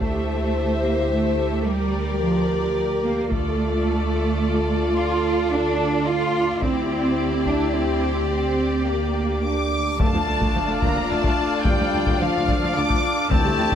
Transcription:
0.00 D2 A3 E4 G4 C5 E5, taiko
0.85 A#3
1.11 A3
1.65 G3 G4 A#4 D5
2.22 F3
3.04 A#3
3.31 D2 A3 F4 A4 D5, taiko
4.97 F4
5.51 D4
6.07 F4
6.61 D2 C4 E4 G4 D5, taiko
7.45 D4, taiko
7.74 C4
8.29 C4 G4, reverse cymbal
8.86 A#3
9.42 D4 D6
9.97 D2 A3 D4 F4 A4 D5 F5, taiko, sub drop
10.02 A5
10.14 D2 F3
10.27 D2 D3
10.40 D2 A3, taiko
10.55 D2 F3
10.68 D2 D3
10.82 D2 A3 A#3 A#5, taiko
10.96 D2 F3
11.10 D2 D3 A3 A5
11.22 D2 A3, taiko
11.64 D2 G3 A3 G5, taiko
11.79 D2 F3
11.93 D2 D3
12.06 D2 A3, taiko
12.19 D2 F3 F5
12.34 D2 D3
12.47 D2 A3, taiko
12.61 D2 F3
12.75 D2 D3 D4 D6
12.89 D2 A3, taiko
13.29 D2 D3 A3 C4 E4 G4 C5 D5 E5 A5, taiko
13.44 D2 G3
13.57 D2 E3
13.70 C4

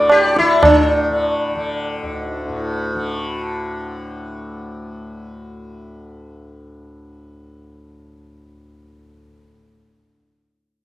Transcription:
Already playing: D2 A2 D3
0.09 G4, tabla na
0.25 D5
0.36 D3 E4, tabla te
0.62 A2 D4, tabla na, tabla ge
1.09 D3
1.55 D3
2.02 D2
2.08 D#4
2.47 A2 D4
2.89 D#4
2.94 D3
3.28 D4

